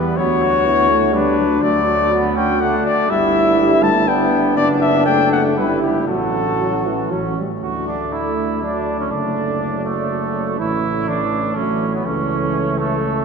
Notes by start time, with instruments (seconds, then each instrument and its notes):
Already playing: tuba E2, french horn G3, trombone B3, trumpet B3, cornet B4
0.17 tuba D2, french horn F#3, trumpet B3, trombone F#4, cornet C#5
0.42 trumpet F#4
0.65 french horn B3, trombone E4
0.90 french horn A3
1.14 french horn G3, trumpet D4, trombone D4, cornet B4
1.39 french horn F#3
1.62 tuba D2, french horn F#3, trumpet A3, cornet D5
2.12 trumpet B3, trombone F#4
2.36 trumpet C#4, cornet G5
2.60 french horn A3, trumpet D4, cornet F#5
2.86 cornet D5
3.09 tuba G1, french horn G3, trombone E4, trumpet E4, cornet E5
3.59 french horn G3
3.83 french horn A3, cornet A5
4.08 trumpet B3, french horn B3, trombone D4, cornet G5
4.57 tuba F#1, french horn B3, trumpet D4, cornet D5
4.81 cornet E5
5.06 french horn A3, cornet G5
5.32 cornet F#5
5.56 tuba G1, french horn G3, trombone E4, trumpet E4, cornet B4
5.82 cornet G4
6.08 tuba A1, french horn F#3, trumpet F#4, trombone F#4, cornet A4
6.60 french horn F#3
6.86 french horn E3
7.11 tuba A1, french horn F#3, trumpet C#4
7.38 french horn G3
7.62 tuba D2, french horn A3, trumpet F#4, cornet D5
7.88 trumpet D4
8.12 trombone A3, trumpet E4
8.61 trombone F#3, french horn A3, trumpet D4, cornet D5
9.00 trumpet C#4
9.11 tuba F#1, trombone D3, french horn A3, trumpet D4, cornet D5
9.61 trombone F#3
9.85 trumpet A3
10.10 trombone F#3
10.59 tuba A1, trombone E3, french horn A3, trumpet E4, cornet C#5
11.08 trombone E3, trumpet D4
11.55 trombone F#3, french horn A3, trumpet C#4, cornet C#5
11.94 trumpet B3
12.05 tuba C#2, trombone E3, french horn A3, trumpet C#4, cornet C#5
12.79 trumpet A3
13.02 trombone A3